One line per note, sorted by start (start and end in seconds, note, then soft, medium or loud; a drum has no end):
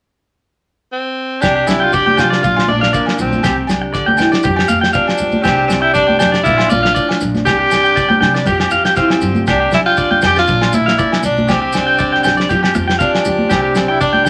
0.92 1.43 C4 medium
1.41 1.65 C2 medium
1.41 2.43 C3 medium
1.41 1.68 D4 medium
1.41 1.54 G4 medium
1.41 2.44 G4 medium
1.41 kick medium
1.41 snare medium
1.41 low agogo medium
1.41 maracas medium
1.56 1.66 G4 medium
1.67 2.12 C2 medium
1.67 1.93 D4 medium
1.67 1.85 E4 medium
1.67 snare medium
1.67 low conga medium
1.67 low agogo medium
1.67 maracas medium
1.80 1.95 F4 medium
1.80 1.91 G5 medium
1.93 2.40 G3 medium
1.93 2.18 D4 medium
1.93 2.21 G4 loud
1.93 2.04 D5 medium
1.93 kick medium
1.93 maracas medium
2.06 2.16 G5 medium
2.06 high conga medium
2.17 2.40 C3 medium
2.17 2.41 D4 medium
2.17 2.43 F4 medium
2.17 2.29 G5 medium
2.17 snare medium
2.17 low conga medium
2.17 low agogo medium
2.17 maracas medium
2.30 2.41 D5 medium
2.30 snare medium
2.43 2.66 A#1 medium
2.43 3.41 A#2 medium
2.43 2.67 D4 medium
2.43 2.54 F4 medium
2.43 2.72 F4 medium
2.43 kick medium
2.43 low conga medium
2.43 maracas medium
2.56 2.67 F4 medium
2.56 snare medium
2.56 low agogo medium
2.68 2.91 A#1 medium
2.68 3.41 D4 medium
2.68 2.94 D4 medium
2.68 2.80 D5 medium
2.68 high conga medium
2.81 2.92 F5 medium
2.81 snare medium
2.93 3.44 F3 medium
2.93 3.17 A#3 medium
2.93 3.41 A#4 medium
2.93 3.05 D5 medium
2.93 kick medium
2.93 maracas medium
3.06 snare medium
3.06 low agogo medium
3.18 3.41 A#1 medium
3.18 3.67 C4 medium
3.18 3.41 F4 medium
3.18 low conga medium
3.18 maracas medium
3.32 high conga medium
3.32 maracas soft
3.43 3.66 C2 medium
3.43 3.94 C3 medium
3.43 3.55 G4 medium
3.43 4.43 G4 medium
3.43 kick medium
3.43 snare medium
3.43 low agogo medium
3.43 maracas medium
3.67 4.13 C2 medium
3.67 4.42 D4 medium
3.67 snare medium
3.67 low conga medium
3.67 low agogo medium
3.67 maracas medium
3.82 muted clean electric guitar stroke medium
3.94 4.19 D3 medium
3.94 4.05 D5 medium
3.94 kick medium
3.94 snare soft
3.94 maracas medium
4.06 4.17 G5 medium
4.06 high conga medium
4.17 4.42 E2 medium
4.17 4.44 E3 medium
4.17 4.30 G5 medium
4.17 snare medium
4.17 low conga medium
4.17 low agogo medium
4.17 maracas medium
4.32 4.42 D5 medium
4.32 snare medium
4.32 maracas soft
4.43 4.67 F2 medium
4.43 5.44 F3 medium
4.43 4.56 G4 medium
4.43 4.95 G4 medium
4.43 kick medium
4.43 low conga medium
4.43 maracas medium
4.56 4.67 G4 medium
4.56 snare medium
4.56 low agogo medium
4.68 4.92 F2 medium
4.68 5.42 F4 medium
4.68 4.80 F5 medium
4.68 high conga medium
4.68 maracas medium
4.81 4.92 G5 medium
4.81 snare medium
4.93 5.43 C4 medium
4.93 5.44 D4 medium
4.93 5.20 G4 medium
4.93 5.05 F5 medium
4.93 kick medium
4.93 maracas medium
5.07 snare medium
5.07 low agogo medium
5.18 5.42 C#2 medium
5.18 low conga medium
5.18 maracas medium
5.22 5.46 G4 medium
5.32 high conga medium
5.32 maracas soft
5.43 5.67 C2 loud
5.43 6.46 C3 medium
5.43 5.67 C4 medium
5.43 5.56 G4 medium
5.43 kick medium
5.43 snare medium
5.43 low agogo medium
5.43 maracas medium
5.47 5.96 G3 soft
5.47 5.72 D4 medium
5.47 5.97 G4 medium
5.57 5.68 G4 medium
5.67 5.82 C4 medium
5.67 snare medium
5.67 low conga medium
5.67 low agogo medium
5.67 maracas medium
5.71 6.15 C2 medium
5.71 6.44 D4 medium
5.81 5.93 E4 medium
5.81 5.93 G5 medium
5.94 6.44 G3 medium
5.94 6.18 D4 loud
5.94 6.06 D5 medium
5.94 kick medium
5.94 snare soft
5.94 maracas medium
5.99 6.21 G4 medium
6.07 6.18 G5 medium
6.07 high conga medium
6.19 6.43 F2 medium
6.19 6.43 D4 medium
6.19 6.47 G4 medium
6.19 6.31 G5 medium
6.19 snare medium
6.19 low conga medium
6.19 low agogo medium
6.19 maracas medium
6.32 6.43 D5 medium
6.32 snare medium
6.32 maracas soft
6.43 6.68 A#1 medium
6.43 6.97 A#2 medium
6.43 6.72 E4 loud
6.43 6.56 F4 medium
6.43 kick medium
6.43 low conga medium
6.43 maracas medium
6.48 7.47 F3 medium
6.48 6.72 D4 medium
6.57 6.68 F4 medium
6.57 snare medium
6.57 low agogo medium
6.69 6.93 A#1 medium
6.69 7.21 F4 loud
6.69 6.81 D5 medium
6.69 high conga medium
6.69 maracas medium
6.74 7.45 D4 medium
6.83 6.94 F5 medium
6.83 snare medium
6.95 7.22 A2 medium
6.95 7.07 D5 medium
6.95 kick medium
6.95 maracas medium
7.09 snare medium
7.09 low agogo medium
7.21 7.43 A#1 medium
7.21 7.47 A#2 medium
7.21 low conga medium
7.21 maracas medium
7.34 snare soft
7.34 high conga medium
7.34 maracas soft
7.45 7.69 C2 loud
7.45 8.47 C3 medium
7.45 7.96 G3 medium
7.45 7.73 D4 medium
7.45 7.57 G4 medium
7.45 8.43 G4 loud
7.45 kick medium
7.45 snare medium
7.45 low agogo medium
7.45 maracas medium
7.59 7.69 G4 medium
7.71 8.16 C2 medium
7.71 7.97 D4 medium
7.71 snare medium
7.71 low agogo medium
7.71 maracas medium
7.84 7.95 G5 medium
7.84 maracas soft
7.96 8.44 G3 medium
7.96 8.21 D4 medium
7.96 8.08 D5 medium
7.96 kick medium
7.96 snare soft
7.96 maracas medium
8.09 8.19 G5 medium
8.09 high conga medium
8.21 8.44 C3 medium
8.21 8.44 D4 medium
8.21 8.33 G5 medium
8.21 snare medium
8.21 low conga medium
8.21 low agogo medium
8.34 8.45 D5 medium
8.34 snare medium
8.34 maracas soft
8.45 8.69 F2 medium
8.45 9.48 F3 medium
8.45 9.46 C4 medium
8.45 8.71 F4 medium
8.45 8.58 G4 medium
8.45 kick medium
8.45 low conga medium
8.45 maracas medium
8.50 9.46 G4 medium
8.60 8.70 G4 medium
8.60 snare medium
8.60 low agogo medium
8.71 8.95 F2 medium
8.71 9.45 F4 medium
8.71 8.83 F5 medium
8.71 maracas medium
8.85 8.96 G5 medium
8.85 snare medium
8.85 maracas soft
8.96 9.21 E3 medium
8.96 9.44 C4 medium
8.96 9.08 F5 medium
8.96 kick medium
8.96 snare soft
8.96 maracas medium
9.10 snare medium
9.10 low agogo medium
9.21 9.44 G2 medium
9.21 9.46 D3 medium
9.21 low conga medium
9.21 maracas medium
9.35 high conga medium
9.35 maracas soft
9.47 9.70 C2 loud
9.47 10.48 C3 medium
9.47 9.72 D4 medium
9.47 9.59 G4 medium
9.47 10.48 G4 soft
9.47 kick medium
9.47 snare medium
9.47 low agogo medium
9.47 maracas medium
9.60 9.71 G4 medium
9.72 10.17 C2 medium
9.72 9.97 D4 medium
9.72 9.80 E4 medium
9.72 snare medium
9.72 low conga medium
9.72 low agogo medium
9.72 maracas medium
9.86 10.20 F4 medium
9.86 9.96 G5 medium
9.97 10.23 D4 medium
9.97 10.09 D5 medium
9.97 kick medium
9.97 maracas medium
10.11 10.21 G5 medium
10.11 high conga medium
10.22 10.45 F2 medium
10.22 10.46 D4 medium
10.22 10.34 G5 medium
10.22 snare medium
10.22 low conga medium
10.22 low agogo medium
10.22 maracas medium
10.26 10.37 G4 loud
10.36 10.77 F4 loud
10.36 10.47 D5 medium
10.36 snare medium
10.36 maracas soft
10.47 10.71 A#1 medium
10.47 11.46 A#2 medium
10.47 10.74 D4 medium
10.47 muted clean electric guitar stroke medium
10.47 kick medium
10.47 low conga medium
10.47 maracas medium
10.61 10.72 F4 medium
10.61 snare medium
10.61 low agogo medium
10.73 10.96 A#1 medium
10.73 11.25 E4 medium
10.73 muted steel-string acoustic guitar stroke medium
10.73 high conga medium
10.73 maracas medium
10.86 10.97 F5 medium
10.86 snare medium
10.98 11.49 F3 medium
10.98 11.47 D4 medium
10.98 11.10 D5 medium
10.98 kick medium
10.98 maracas medium
11.12 snare medium
11.12 low agogo medium
11.23 11.46 B1 medium
11.23 11.52 D4 medium
11.23 low conga medium
11.23 maracas medium
11.37 high conga medium
11.37 maracas soft
11.48 11.72 C2 loud
11.48 12.50 C3 medium
11.48 12.50 C4 medium
11.48 11.60 G4 medium
11.48 12.00 G4 medium
11.48 kick medium
11.48 snare medium
11.48 low agogo medium
11.48 maracas medium
11.62 11.72 G4 medium
11.73 12.18 C2 medium
11.73 12.47 D4 medium
11.73 snare medium
11.73 low conga medium
11.73 low agogo medium
11.73 maracas medium
11.87 11.97 G5 medium
11.98 12.47 G3 medium
11.98 12.25 G4 medium
11.98 12.10 D5 medium
11.98 kick medium
11.98 maracas medium
12.12 12.22 G5 medium
12.12 snare soft
12.23 12.47 C2 medium
12.23 12.51 G4 medium
12.23 12.35 G5 medium
12.23 snare medium
12.23 low conga medium
12.23 low agogo medium
12.23 maracas medium
12.37 12.48 D5 medium
12.37 snare medium
12.37 maracas soft
12.49 12.72 F2 medium
12.49 13.51 F3 medium
12.49 12.99 C4 medium
12.49 12.74 F4 medium
12.49 12.61 G4 medium
12.49 kick medium
12.49 low conga medium
12.49 maracas medium
12.53 13.00 G4 medium
12.63 12.73 G4 medium
12.63 snare medium
12.63 low agogo medium
12.74 12.98 F2 medium
12.74 13.48 F4 medium
12.74 muted clean electric guitar stroke medium
12.74 high conga medium
12.74 maracas medium
12.88 12.98 G5 medium
12.88 snare medium
12.99 13.47 C4 medium
12.99 13.53 D4 medium
12.99 13.24 G4 medium
12.99 13.11 F5 medium
12.99 kick medium
12.99 maracas medium
13.15 snare medium
13.15 low agogo medium
13.25 13.48 D2 loud
13.25 13.50 G4 medium
13.25 low conga medium
13.25 maracas medium
13.38 high conga medium
13.50 13.73 C2 loud
13.50 14.29 C3 medium
13.50 13.99 G3 medium
13.50 13.76 C4 medium
13.50 13.75 D4 medium
13.50 13.61 G4 medium
13.50 14.00 G4 medium
13.50 kick medium
13.50 snare medium
13.50 low agogo medium
13.50 maracas medium
13.62 13.73 G4 medium
13.75 14.20 C2 medium
13.75 13.91 C4 medium
13.75 14.29 D4 medium
13.75 snare medium
13.75 low conga soft
13.75 low agogo medium
13.75 maracas medium
13.88 14.00 E4 medium
13.88 13.99 G5 medium
14.01 14.29 G3 medium
14.01 14.24 D4 medium
14.01 14.26 G4 medium
14.01 14.12 D5 medium
14.01 kick medium
14.01 maracas medium
14.13 14.23 G5 medium
14.13 high conga medium
14.25 14.29 G5 medium
14.25 low conga medium
14.25 maracas medium